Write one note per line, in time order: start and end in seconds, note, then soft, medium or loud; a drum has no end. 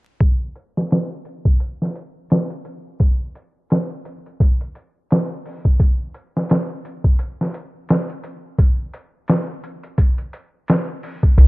0.20 kick medium
0.20 closed hi-hat medium
0.55 closed hi-hat medium
0.77 snare soft
0.91 snare medium
0.91 closed hi-hat medium
1.25 closed hi-hat medium
1.45 kick medium
1.60 closed hi-hat medium
1.82 snare soft
1.96 closed hi-hat medium
2.30 snare loud
2.30 closed hi-hat medium
2.50 closed hi-hat soft
2.65 closed hi-hat medium
3.00 kick medium
3.00 closed hi-hat medium
3.35 closed hi-hat medium
3.70 snare medium
3.70 closed hi-hat medium
4.05 closed hi-hat medium
4.26 closed hi-hat soft
4.40 kick loud
4.40 closed hi-hat medium
4.61 closed hi-hat soft
4.75 closed hi-hat medium
5.11 snare loud
5.11 closed hi-hat medium
5.46 open hi-hat medium
5.65 kick medium
5.80 kick medium
5.80 closed hi-hat medium
6.14 closed hi-hat medium
6.37 snare soft
6.49 snare loud
6.49 closed hi-hat medium
6.85 closed hi-hat medium
7.04 kick medium
7.19 closed hi-hat medium
7.41 snare soft
7.54 closed hi-hat medium
7.89 snare loud
7.89 closed hi-hat medium
8.09 closed hi-hat soft
8.24 closed hi-hat medium
8.59 kick loud
8.59 closed hi-hat medium
8.94 closed hi-hat medium
9.28 snare medium
9.28 closed hi-hat medium
9.64 closed hi-hat medium
9.83 closed hi-hat soft
9.98 kick medium
9.98 closed hi-hat medium
10.18 closed hi-hat soft
10.33 closed hi-hat medium
10.68 snare loud
10.68 closed hi-hat medium
11.03 open hi-hat medium
11.23 kick medium
11.38 11.48 C2 medium
11.38 kick medium
11.38 closed hi-hat medium